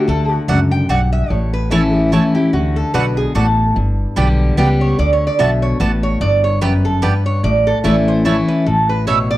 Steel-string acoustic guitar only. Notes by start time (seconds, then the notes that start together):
0.08 D3
0.49 F#2
0.89 G2
1.30 A2
1.71 E3 A3 C#4 E4
2.12 E3 A3 C#4 E4
2.35 C#4 E4
2.54 D3
2.95 B2
3.35 A2
3.76 G2
4.16 D3 G3 B3 G4
4.58 G3 B3 G4
4.99 D3
5.39 B2
5.80 A2
6.21 G2
6.62 F#2
7.03 G2
7.44 A2
7.84 E3 A3 C#4 E4
8.25 E3 A3 C#4 E4
8.66 A2
9.07 B2